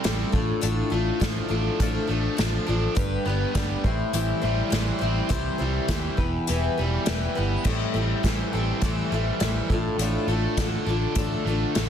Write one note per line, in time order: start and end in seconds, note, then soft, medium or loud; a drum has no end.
0.00 0.33 G3 medium
0.00 0.33 C4 medium
0.00 0.33 E4 medium
0.04 0.23 A1 medium
0.04 0.34 G3 medium
0.04 0.34 C4 medium
0.04 0.33 E4 medium
0.04 0.31 A4 medium
0.04 snare loud
0.04 closed hi-hat medium
0.32 0.51 A1 medium
0.32 0.62 A2 medium
0.32 0.61 A3 soft
0.32 0.61 D4 soft
0.32 0.61 F4 medium
0.32 0.62 A4 medium
0.32 kick medium
0.61 0.81 A1 medium
0.61 0.91 A2 medium
0.61 2.09 A2 medium
0.61 0.91 D3 medium
0.61 0.92 A3 medium
0.61 0.91 D4 medium
0.61 0.90 F4 medium
0.61 0.89 A4 medium
0.61 closed hi-hat medium
0.90 1.10 A1 medium
0.90 2.08 A3 medium
0.90 1.19 A3 soft
0.90 1.20 D4 soft
0.90 1.21 F4 medium
0.90 1.20 A4 medium
1.20 1.39 A1 medium
1.20 1.79 F3 medium
1.20 1.50 A3 medium
1.20 1.50 D4 medium
1.20 1.49 F4 medium
1.20 1.47 A4 medium
1.20 kick medium
1.20 snare loud
1.20 closed hi-hat medium
1.49 1.68 A1 medium
1.49 1.80 A3 soft
1.49 2.66 D4 medium
1.49 1.80 D4 soft
1.49 1.80 F4 medium
1.49 1.79 A4 medium
1.80 1.98 A1 medium
1.80 2.09 A2 medium
1.80 2.09 D3 medium
1.80 2.38 F3 medium
1.80 2.10 A3 medium
1.80 2.09 D4 medium
1.80 2.08 F4 medium
1.80 2.06 A4 medium
1.80 kick medium
1.80 closed hi-hat medium
2.07 2.27 A1 medium
2.07 2.97 A3 medium
2.07 2.36 A3 soft
2.07 2.37 D4 soft
2.07 2.38 F4 soft
2.07 2.38 A4 medium
2.37 2.57 A1 medium
2.37 2.97 F3 medium
2.37 2.67 A3 medium
2.37 2.68 D4 medium
2.37 2.67 F4 medium
2.37 2.65 A4 medium
2.37 snare loud
2.37 closed hi-hat medium
2.66 2.86 A1 medium
2.66 2.95 A3 soft
2.66 2.96 D4 medium
2.66 2.95 D4 medium
2.66 2.96 F4 medium
2.66 2.96 A4 medium
2.95 3.15 G1 medium
2.95 3.84 G2 medium
2.95 3.25 G3 medium
2.95 3.26 D4 medium
2.95 3.26 G4 medium
2.95 3.24 B4 medium
2.95 kick loud
2.95 closed hi-hat medium
3.25 3.44 G1 medium
3.25 3.84 B3 medium
3.25 3.56 G4 medium
3.25 3.55 B4 medium
3.29 3.55 D4 soft
3.54 3.73 G1 medium
3.54 3.86 G3 medium
3.54 3.85 G3 medium
3.54 3.85 D4 medium
3.54 3.85 G4 medium
3.54 3.84 B4 medium
3.54 kick medium
3.54 snare loud
3.54 closed hi-hat medium
3.83 4.02 A1 medium
3.83 5.30 A2 medium
3.83 4.14 C4 soft
3.83 4.14 E4 medium
3.83 4.14 C5 medium
3.83 kick loud
3.87 4.13 G3 soft
4.13 4.31 A1 medium
4.13 4.43 A2 medium
4.13 4.43 E3 medium
4.13 4.73 E3 medium
4.13 4.43 G3 medium
4.13 4.43 C4 medium
4.13 4.42 E4 medium
4.13 4.40 C5 medium
4.13 closed hi-hat medium
4.42 4.61 A1 medium
4.42 5.60 G3 medium
4.42 4.69 G3 soft
4.42 4.71 C4 soft
4.42 4.72 E4 medium
4.42 4.72 C5 medium
4.70 4.90 A1 medium
4.70 5.89 E3 medium
4.70 5.01 G3 medium
4.70 5.01 C4 medium
4.70 5.00 E4 medium
4.70 4.98 C5 medium
4.70 snare loud
4.70 closed hi-hat medium
4.99 5.20 A1 medium
4.99 5.29 C4 soft
4.99 5.31 C4 medium
4.99 5.30 E4 medium
4.99 5.30 C5 medium
5.03 5.29 G3 soft
5.29 5.49 C2 medium
5.29 5.59 C3 medium
5.29 6.19 C3 medium
5.29 5.59 E3 medium
5.29 5.60 G3 medium
5.29 5.59 C4 medium
5.29 5.58 E4 medium
5.29 5.57 C5 medium
5.29 kick medium
5.29 closed hi-hat medium
5.58 5.78 C2 medium
5.58 6.19 G3 medium
5.58 5.87 G3 soft
5.58 5.89 C4 soft
5.58 5.89 E4 medium
5.58 5.89 C5 medium
5.88 6.07 D#2 medium
5.88 6.19 E3 medium
5.88 6.18 G3 medium
5.88 6.19 C4 medium
5.88 6.19 E4 medium
5.88 6.17 C5 medium
5.88 kick medium
5.88 snare loud
5.88 closed hi-hat medium
6.17 6.36 E1 medium
6.17 7.65 E2 medium
6.17 6.48 E4 soft
6.17 6.48 G4 soft
6.17 6.47 B4 soft
6.17 kick medium
6.47 6.67 E1 medium
6.47 6.77 E3 medium
6.47 7.07 E3 medium
6.47 6.78 G3 medium
6.47 6.78 E4 medium
6.47 6.78 G4 medium
6.47 6.76 B4 medium
6.47 closed hi-hat medium
6.78 6.96 E1 medium
6.78 7.66 G3 medium
6.78 7.05 E4 soft
6.78 7.06 G4 medium
6.78 7.07 B4 medium
7.05 7.26 E1 medium
7.05 7.66 E3 medium
7.05 7.35 G3 medium
7.05 7.36 E4 medium
7.05 7.36 G4 medium
7.05 7.34 B4 medium
7.05 snare loud
7.05 closed hi-hat medium
7.35 7.55 G1 medium
7.35 7.66 B3 medium
7.35 7.65 E4 soft
7.35 7.66 G4 medium
7.35 7.65 B4 medium
7.64 7.83 A1 medium
7.64 7.94 A2 medium
7.64 9.12 A2 medium
7.64 7.95 E3 medium
7.64 7.95 G3 medium
7.64 7.95 C4 medium
7.64 7.93 E4 medium
7.64 7.93 A4 medium
7.64 kick medium
7.64 crash medium
7.94 8.12 A1 medium
7.94 9.09 G3 medium
7.94 8.22 G3 soft
7.94 8.23 C4 medium
7.94 8.24 E4 soft
7.94 8.24 A4 medium
8.23 8.42 A1 medium
8.23 8.80 E3 medium
8.23 8.53 G3 medium
8.23 8.53 C4 medium
8.23 8.53 E4 medium
8.23 8.52 A4 medium
8.23 kick medium
8.23 snare medium
8.23 closed hi-hat medium
8.53 8.71 A1 medium
8.53 8.83 G3 soft
8.53 9.71 C4 medium
8.53 8.83 C4 soft
8.53 8.83 E4 soft
8.53 8.82 A4 medium
8.81 9.00 A1 medium
8.81 9.12 A2 medium
8.81 9.39 E3 medium
8.81 9.12 E3 medium
8.81 9.13 G3 medium
8.81 9.13 C4 medium
8.81 9.13 E4 medium
8.81 9.11 A4 medium
8.81 kick loud
8.81 closed hi-hat medium
9.10 9.30 A1 medium
9.10 9.70 G3 medium
9.10 9.42 E4 medium
9.10 9.41 A4 medium
9.15 9.41 G3 soft
9.15 9.41 C4 soft
9.40 9.59 A1 medium
9.40 9.70 E3 medium
9.40 9.71 G3 medium
9.40 9.71 C4 medium
9.40 9.71 E4 medium
9.40 snare loud
9.40 closed hi-hat medium
9.46 9.69 A4 medium
9.69 9.88 A1 medium
9.69 9.98 A2 medium
9.69 10.00 A3 soft
9.69 10.00 D4 soft
9.69 10.00 F4 medium
9.69 10.00 A4 medium
9.69 kick medium
9.98 10.16 A1 medium
9.98 11.46 A2 medium
9.98 10.29 A2 medium
9.98 10.30 F3 medium
9.98 10.30 A3 medium
9.98 10.29 D4 medium
9.98 10.28 F4 medium
9.98 closed hi-hat medium
10.02 10.27 A4 medium
10.27 10.46 A1 medium
10.27 11.44 A3 medium
10.27 10.57 D4 soft
10.27 10.58 F4 medium
10.27 10.58 A4 medium
10.31 10.56 A3 soft
10.57 10.76 A1 medium
10.57 11.16 D3 medium
10.57 10.87 A3 medium
10.57 10.88 D4 medium
10.57 10.87 F4 medium
10.57 kick medium
10.57 snare loud
10.57 closed hi-hat medium
10.61 10.85 A4 medium
10.86 11.05 A1 medium
10.86 11.89 D4 medium
10.86 11.17 D4 soft
10.86 11.18 F4 soft
10.86 11.16 A4 medium
10.90 11.17 A3 soft
11.15 11.34 A1 medium
11.15 11.46 A2 medium
11.15 11.74 D3 medium
11.15 11.47 F3 medium
11.15 11.47 A3 medium
11.15 11.47 D4 medium
11.15 11.47 F4 medium
11.15 11.46 A4 medium
11.15 kick loud
11.15 closed hi-hat medium
11.45 11.64 A1 medium
11.45 11.89 A3 medium
11.45 11.77 F4 medium
11.45 11.76 A4 medium
11.49 11.74 A3 soft
11.49 11.76 D4 medium
11.75 11.89 A1 medium
11.75 11.89 D3 medium
11.75 11.89 A3 medium
11.75 11.89 D4 medium
11.75 11.89 F4 medium
11.75 11.89 A4 medium
11.75 snare loud
11.75 closed hi-hat medium